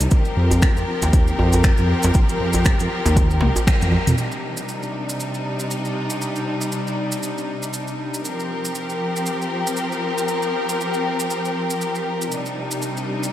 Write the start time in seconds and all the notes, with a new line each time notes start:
0.00 C2, closed hi-hat, maracas
0.11 F3 C4 G4 A#4, kick, closed hi-hat, djembe tone, maracas
0.25 maracas
0.37 F2
0.51 closed hi-hat, djembe tone, maracas
0.62 finger snap, kick, closed hi-hat, maracas
0.77 F2, maracas
1.02 D#2, closed hi-hat, djembe slap, maracas
1.13 kick, closed hi-hat, maracas
1.27 maracas
1.39 F2, djembe tone
1.52 closed hi-hat, djembe tone, maracas
1.63 finger snap, kick, closed hi-hat, maracas
1.77 F2, maracas
2.03 F2, closed hi-hat, djembe slap, maracas
2.14 kick, closed hi-hat, djembe tone, maracas
2.29 closed hi-hat, maracas
2.41 F2
2.53 closed hi-hat, djembe tone, maracas
2.64 finger snap, kick, closed hi-hat, maracas
2.79 F2, closed hi-hat, maracas
3.05 D#2, closed hi-hat, djembe slap, maracas
3.16 kick, closed hi-hat, djembe tone, maracas
3.31 maracas
3.41 C2, high tom, djembe slap
3.56 closed hi-hat, djembe tone, maracas
3.67 finger snap, kick, closed hi-hat, mid tom, maracas
3.81 F2, closed hi-hat, mid tom, maracas
3.92 djembe tone
4.07 F2, closed hi-hat, mid tom, maracas
4.18 C3 G3 D4 D#4, maracas
4.32 maracas
4.57 maracas
4.68 maracas
4.83 maracas
5.09 maracas
5.20 maracas
5.34 maracas
5.59 maracas
5.71 maracas
5.85 maracas
6.10 maracas
6.22 maracas
6.36 maracas
6.61 maracas
6.72 maracas
6.87 maracas
7.12 maracas
7.23 maracas
7.38 maracas
7.62 maracas
7.73 maracas
7.88 maracas
8.14 maracas
8.24 F3 C4 G4 A#4, maracas
8.40 maracas
8.65 maracas
8.75 maracas
8.90 maracas
9.16 maracas
9.26 maracas
9.42 maracas
9.67 maracas
9.77 maracas
9.92 maracas
10.18 maracas
10.28 maracas
10.42 maracas
10.69 maracas
10.81 maracas
10.94 maracas
11.20 maracas
11.30 maracas
11.45 maracas
11.70 maracas
11.81 maracas
11.95 maracas
12.22 maracas
12.32 C3 G3 D4 D#4, maracas
12.46 maracas
12.71 maracas
12.82 maracas
12.97 maracas
13.23 maracas